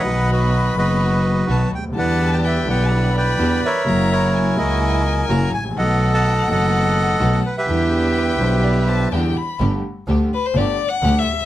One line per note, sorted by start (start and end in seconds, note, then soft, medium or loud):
0.00 0.72 B1 medium
0.00 0.72 B2 medium
0.00 0.71 D#3 medium
0.00 0.72 F#3 medium
0.00 0.30 B4 medium
0.00 0.31 D#5 medium
0.00 0.31 F#5 medium
0.04 0.72 B3 medium
0.04 0.72 D#4 medium
0.04 0.72 F#4 medium
0.04 0.73 F#4 medium
0.04 1.72 B5 medium
0.32 0.76 F#4 medium
0.32 0.77 B4 medium
0.32 0.75 D#5 medium
0.73 1.44 F#1 medium
0.73 1.44 F#2 medium
0.73 1.43 D#3 medium
0.73 1.43 F#3 soft
0.73 1.44 B3 soft
0.73 1.44 B3 medium
0.73 1.44 D#4 medium
0.73 1.44 F#4 medium
0.73 1.45 F#4 medium
0.78 1.69 F#4 medium
0.78 1.69 B4 medium
0.78 1.45 D#5 medium
1.47 1.67 B1 medium
1.47 1.68 B1 medium
1.47 1.67 B2 medium
1.47 1.67 D#3 medium
1.47 1.68 F#3 medium
1.47 1.68 B3 medium
1.47 1.68 D#4 medium
1.47 1.68 F#4 medium
1.47 1.71 A5 medium
1.72 1.95 D2 medium
1.72 1.85 G5 medium
1.78 1.84 C#2 soft
1.83 1.89 D2 medium
1.90 1.96 D#2 medium
1.90 2.62 D3 medium
1.94 2.63 E2 medium
1.94 2.64 E2 medium
1.94 2.63 E3 medium
1.94 2.63 G3 medium
1.94 2.64 B3 medium
1.94 2.63 D4 medium
1.94 2.63 E4 medium
1.94 2.65 E4 medium
1.94 2.63 G4 medium
1.94 2.46 A5 medium
1.98 2.68 B4 medium
1.98 2.68 D5 medium
1.98 2.31 F#5 medium
2.33 2.38 G5 medium
2.45 2.67 E5 medium
2.45 2.93 G5 medium
2.65 3.35 B1 medium
2.65 3.35 B2 medium
2.65 3.34 D3 medium
2.65 3.35 G3 medium
2.65 3.35 B3 medium
2.65 3.35 D4 medium
2.65 3.35 E4 medium
2.65 3.36 E4 medium
2.65 3.35 G4 medium
2.70 3.16 B4 medium
2.70 3.16 D5 medium
2.70 3.13 F#5 medium
2.92 3.89 B5 loud
3.17 3.84 B4 medium
3.17 3.84 D5 medium
3.17 3.61 G5 medium
3.38 3.59 E2 medium
3.38 3.58 D3 medium
3.38 3.59 E3 medium
3.38 3.59 G3 medium
3.38 3.59 B3 medium
3.38 3.59 D4 medium
3.38 3.59 E4 medium
3.38 3.59 G4 medium
3.65 4.11 A#4 medium
3.65 4.10 C#5 medium
3.65 4.13 E5 medium
3.85 4.54 F#1 medium
3.85 4.55 F#2 medium
3.85 4.53 C#3 medium
3.85 4.54 F#3 medium
3.85 4.54 A#3 medium
3.85 4.55 A#3 medium
3.85 4.54 E4 medium
3.85 4.55 E4 medium
3.85 4.54 F#4 medium
3.85 4.36 A#5 loud
4.12 5.02 E4 medium
4.12 4.57 A#4 medium
4.12 4.55 C#5 medium
4.34 5.79 G#5 medium
4.56 5.25 C#2 medium
4.56 5.26 C#2 medium
4.56 5.25 C#3 medium
4.56 5.25 F#3 soft
4.56 5.25 A#3 medium
4.56 5.26 A#3 medium
4.56 5.25 E4 medium
4.56 5.26 E4 medium
4.56 5.26 F#4 medium
4.56 5.49 A#4 medium
4.56 5.25 D#5 medium
5.29 5.49 F#1 medium
5.29 5.49 F#2 medium
5.29 5.49 C#3 medium
5.29 5.49 F#3 medium
5.29 5.49 A#3 medium
5.29 5.49 E4 medium
5.29 5.50 E4 medium
5.29 5.49 F#4 medium
5.29 5.51 A#5 medium
5.53 5.75 A1 medium
5.53 5.64 G#5 medium
5.59 5.65 G#1 soft
5.64 5.71 A1 medium
5.71 5.77 A#1 medium
5.76 6.44 B1 medium
5.76 6.45 B1 medium
5.76 6.45 B2 medium
5.76 6.44 D#3 medium
5.76 6.45 A3 medium
5.76 6.44 B3 medium
5.76 6.45 B3 medium
5.76 6.44 D#4 medium
5.76 6.46 F#4 medium
5.76 6.44 A4 medium
5.76 6.50 A4 medium
5.76 6.13 D#5 medium
5.76 7.68 F#5 medium
5.76 6.11 F#5 medium
6.14 6.50 D#5 medium
6.14 6.49 F#5 medium
6.14 6.47 A5 medium
6.47 7.16 F#1 medium
6.47 7.17 F#1 medium
6.47 7.17 F#2 medium
6.47 7.16 D#3 medium
6.47 7.17 A3 medium
6.47 7.16 B3 medium
6.47 7.17 B3 medium
6.47 7.16 D#4 medium
6.47 7.16 A4 medium
6.47 7.41 A4 medium
6.47 7.41 D#5 medium
6.47 7.41 F#5 medium
6.52 7.18 F#4 medium
7.19 7.40 B1 medium
7.19 7.40 B2 medium
7.19 7.40 D#3 medium
7.19 7.40 A3 medium
7.19 7.39 B3 medium
7.19 7.40 B3 medium
7.19 7.39 D#4 medium
7.19 7.40 F#4 medium
7.19 7.39 A4 medium
7.46 7.56 B4 medium
7.57 9.09 G4 medium
7.57 9.09 B4 medium
7.57 9.09 E5 medium
7.67 8.35 E2 medium
7.67 8.36 E2 medium
7.67 8.36 D3 medium
7.67 8.36 E3 medium
7.67 8.36 G3 medium
7.67 8.37 B3 medium
7.67 8.35 D4 medium
7.67 8.36 E4 medium
7.67 8.36 G4 medium
7.67 8.66 G5 medium
7.71 8.37 E4 medium
8.18 8.24 B4 medium
8.38 9.08 B1 medium
8.38 9.08 B2 medium
8.38 9.07 D3 medium
8.38 9.08 G3 medium
8.38 9.08 B3 medium
8.38 9.08 D4 medium
8.38 9.08 E4 medium
8.38 9.09 E4 medium
8.38 9.08 G4 medium
8.38 8.63 C5 medium
8.63 8.87 D5 medium
8.63 8.90 B5 medium
8.88 9.10 C5 medium
8.88 9.14 A5 medium
9.11 9.32 E2 medium
9.11 9.33 E2 medium
9.11 9.33 D3 medium
9.11 9.33 E3 medium
9.11 9.33 G3 medium
9.11 9.33 B3 medium
9.11 9.32 D4 medium
9.11 9.32 E4 medium
9.11 9.33 E4 medium
9.11 9.32 G4 medium
9.11 9.57 B4 medium
9.11 9.38 G5 medium
9.37 9.60 B5 medium
9.59 9.80 G1 medium
9.59 9.81 G1 medium
9.59 9.81 G2 medium
9.59 9.80 D3 medium
9.59 9.81 G3 medium
9.59 9.80 A3 medium
9.59 9.81 A3 medium
9.59 9.80 D4 medium
9.59 9.80 G4 medium
9.59 9.81 G4 medium
10.07 10.28 D2 medium
10.07 10.28 D3 medium
10.07 10.28 G3 medium
10.07 10.28 A3 medium
10.07 10.28 D4 medium
10.07 10.28 G4 medium
10.07 10.29 G4 medium
10.34 10.47 B4 medium
10.46 10.58 C5 medium
10.55 10.75 G1 medium
10.55 10.76 G1 medium
10.55 10.76 G2 medium
10.55 10.77 D3 medium
10.55 10.76 G3 medium
10.55 10.76 A3 medium
10.55 10.76 D4 medium
10.55 10.76 G4 medium
10.55 10.77 G4 medium
10.55 10.90 D5 medium
10.89 11.20 F#5 medium
11.02 11.23 D2 medium
11.02 11.24 D2 medium
11.02 11.24 D3 medium
11.02 11.23 G3 medium
11.02 11.24 A3 medium
11.02 11.24 D4 medium
11.02 11.24 G4 medium
11.19 11.45 E5 medium
11.27 11.45 D2 soft
11.33 11.39 C#2 soft
11.39 11.45 D2 medium